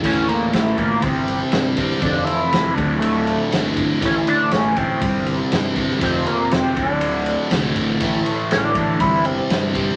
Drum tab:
CC |x---------------|----------------|----------------|----------------|
RD |--x-x-x-x-x-x-x-|x-x-x-x-x-x-x-x-|x-x-x-x-x-x-x-x-|x-x-x-x-x-x-x-x-|
SD |----o-------o--o|----o-------o---|----o-------o--o|----o-------o---|
BD |o-----o-o-----o-|o-----o-------o-|o-----o-o-----o-|o-----o-------o-|

CC |----------------|
RD |x-x-x-x-x-x-x-x-|
SD |----o-------o---|
BD |o-----o-o-----o-|